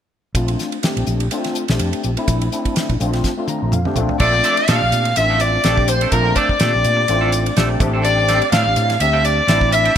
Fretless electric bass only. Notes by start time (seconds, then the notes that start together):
0.35 A#1
0.96 A#1
1.07 A#1
1.69 A#1
1.80 F2
1.94 muted fretless electric bass stroke
2.04 A#1
2.28 A#1
2.90 A#1
3.01 A#1
3.62 A#1
3.73 F2
3.86 muted fretless electric bass stroke
3.96 A#1
4.20 A#1
4.69 A#2
4.82 A#1
4.92 A#2
5.17 A1
5.65 A#1
6.12 A#1
6.61 A#2
6.75 A#1
6.85 A#2
7.09 A1
7.57 A#1
7.80 A1
8.52 A2
8.66 A1
8.76 A2
9.00 D2
9.48 A1